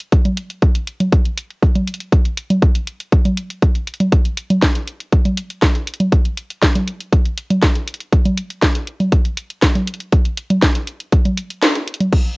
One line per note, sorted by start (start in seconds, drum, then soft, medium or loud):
0.00 closed hi-hat soft
0.12 kick loud
0.12 closed hi-hat medium
0.25 closed hi-hat soft
0.25 low conga medium
0.37 closed hi-hat loud
0.50 closed hi-hat soft
0.62 kick loud
0.62 closed hi-hat soft
0.75 closed hi-hat medium
0.87 closed hi-hat loud
1.00 closed hi-hat soft
1.00 low conga medium
1.12 kick loud
1.12 closed hi-hat medium
1.25 closed hi-hat soft
1.37 closed hi-hat loud
1.50 closed hi-hat soft
1.62 kick loud
1.62 closed hi-hat medium
1.75 closed hi-hat soft
1.75 low conga medium
1.87 closed hi-hat medium
1.94 closed hi-hat medium
2.00 closed hi-hat soft
2.12 kick loud
2.12 closed hi-hat medium
2.25 closed hi-hat soft
2.37 closed hi-hat loud
2.50 closed hi-hat soft
2.50 low conga medium
2.62 kick loud
2.62 closed hi-hat soft
2.75 closed hi-hat medium
2.87 closed hi-hat medium
3.00 closed hi-hat soft
3.12 kick loud
3.12 closed hi-hat medium
3.25 closed hi-hat soft
3.25 low conga medium
3.37 closed hi-hat loud
3.50 closed hi-hat soft
3.62 kick loud
3.62 closed hi-hat medium
3.75 closed hi-hat soft
3.87 closed hi-hat medium
3.94 closed hi-hat medium
4.00 closed hi-hat soft
4.00 low conga medium
4.12 kick loud
4.12 closed hi-hat medium
4.25 closed hi-hat soft
4.37 closed hi-hat loud
4.50 closed hi-hat soft
4.50 low conga loud
4.62 kick loud
4.62 snare loud
4.62 closed hi-hat soft
4.75 closed hi-hat medium
4.87 closed hi-hat medium
5.00 closed hi-hat soft
5.12 kick loud
5.12 closed hi-hat medium
5.25 closed hi-hat soft
5.25 low conga medium
5.37 closed hi-hat loud
5.50 closed hi-hat soft
5.62 kick loud
5.62 snare loud
5.62 closed hi-hat medium
5.75 closed hi-hat soft
5.87 closed hi-hat medium
5.94 closed hi-hat medium
6.00 closed hi-hat soft
6.00 low conga medium
6.12 kick loud
6.12 closed hi-hat medium
6.25 closed hi-hat soft
6.37 closed hi-hat loud
6.50 closed hi-hat soft
6.62 kick loud
6.62 snare loud
6.62 closed hi-hat soft
6.75 closed hi-hat medium
6.75 low conga loud
6.87 closed hi-hat medium
7.00 closed hi-hat soft
7.12 kick loud
7.12 closed hi-hat medium
7.25 closed hi-hat soft
7.37 closed hi-hat loud
7.50 closed hi-hat soft
7.50 low conga medium
7.62 kick loud
7.62 snare loud
7.62 closed hi-hat medium
7.75 closed hi-hat soft
7.87 closed hi-hat medium
7.94 closed hi-hat medium
8.00 closed hi-hat soft
8.12 kick loud
8.12 closed hi-hat medium
8.25 closed hi-hat soft
8.25 low conga loud
8.37 closed hi-hat loud
8.50 closed hi-hat soft
8.62 kick loud
8.62 snare loud
8.62 closed hi-hat soft
8.75 closed hi-hat medium
8.87 closed hi-hat medium
9.00 closed hi-hat soft
9.00 low conga medium
9.12 kick loud
9.12 closed hi-hat medium
9.25 closed hi-hat soft
9.37 closed hi-hat loud
9.50 closed hi-hat soft
9.62 kick loud
9.62 snare loud
9.62 closed hi-hat medium
9.75 closed hi-hat soft
9.75 low conga loud
9.87 closed hi-hat medium
9.94 closed hi-hat medium
10.00 closed hi-hat soft
10.12 kick loud
10.12 closed hi-hat medium
10.25 closed hi-hat soft
10.37 closed hi-hat loud
10.50 closed hi-hat soft
10.50 low conga medium
10.62 kick loud
10.62 snare loud
10.62 closed hi-hat soft
10.75 closed hi-hat medium
10.87 closed hi-hat medium
11.00 closed hi-hat soft
11.12 kick loud
11.12 closed hi-hat medium
11.25 closed hi-hat soft
11.25 low conga medium
11.37 closed hi-hat loud
11.50 closed hi-hat soft
11.62 snare loud
11.62 closed hi-hat medium
11.75 closed hi-hat soft
11.87 closed hi-hat medium
11.94 closed hi-hat medium
12.00 closed hi-hat soft
12.00 low conga medium
12.12 kick loud
12.12 crash medium